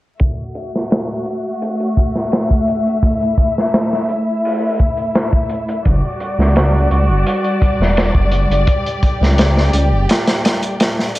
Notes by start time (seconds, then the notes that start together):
0.20 A3 F#4 E5, kick, closed hi-hat
0.55 closed hi-hat
0.76 snare
0.91 snare, closed hi-hat
1.25 closed hi-hat
1.62 closed hi-hat
1.80 closed hi-hat
1.97 kick, closed hi-hat
2.15 snare
2.32 snare, closed hi-hat
2.51 kick
2.68 closed hi-hat
2.86 closed hi-hat
3.03 E4, kick, closed hi-hat
3.21 closed hi-hat
3.38 kick, closed hi-hat
3.58 snare
3.74 snare, closed hi-hat
3.93 snare
4.09 closed hi-hat
4.45 open hi-hat
4.79 kick, closed hi-hat
4.97 closed hi-hat
5.15 snare, closed hi-hat
5.33 kick
5.49 closed hi-hat
5.68 closed hi-hat
5.84 F#1 G3 F#4 D5, kick, closed hi-hat
6.20 closed hi-hat
6.39 C#2, snare
6.56 snare, closed hi-hat
6.91 C#2, closed hi-hat
7.09 F#1
7.27 closed hi-hat
7.44 closed hi-hat
7.62 kick, closed hi-hat
7.80 E1, snare
7.97 snare, closed hi-hat
8.15 F#1, kick
8.32 closed hi-hat
8.50 F#1, closed hi-hat
8.67 G4, kick, closed hi-hat
8.86 closed hi-hat
9.03 kick, closed hi-hat
9.21 C#2, snare
9.38 snare, closed hi-hat
9.57 snare
9.73 C#2, closed hi-hat
9.92 F#1
10.09 snare, closed hi-hat
10.27 snare, closed hi-hat
10.45 snare, closed hi-hat
10.63 closed hi-hat
10.80 snare, closed hi-hat
10.99 snare
11.15 closed hi-hat